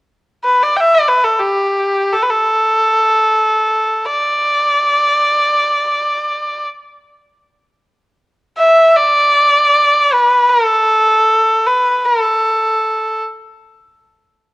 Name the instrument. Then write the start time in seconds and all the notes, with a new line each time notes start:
erhu
0.43 B4
0.62 D5
0.76 E5 G5
0.94 D5
1.08 B4
1.24 A4
1.39 G4
2.13 A4
2.23 B4
2.31 A4
4.05 D5
8.58 E5
8.97 D5
10.13 B4
10.49 A4
11.66 B4
12.05 A4